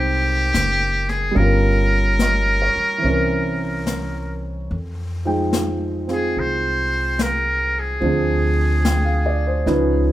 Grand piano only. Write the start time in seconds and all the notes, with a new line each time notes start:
Already playing: G#3 C4 D#4 A#4 C5 G5
1.31 G3 C#4
1.39 F4 A#4
2.20 D#5
2.62 C#5
2.98 E3 C4
3.05 C#4
3.09 A#4
5.25 F3 G#3 D#4 G5
6.08 C4 F4 G#4
8.00 F3 C4 D4
8.05 G#4
8.85 G5
9.05 F5
9.26 D5
9.47 C5
9.66 F3 C#4 D#4 B4